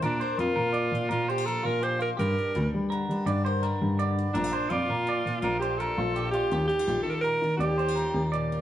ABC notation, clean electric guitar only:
X:1
M:12/8
L:1/8
Q:3/8=111
K:Bb
V:1 name="Clean electric guitar"
B c z B d2 B c B F G F | G2 z2 B2 d c B2 d2 | B c d B d2 B c B F G F | G2 G2 B2 d c B2 d2 |]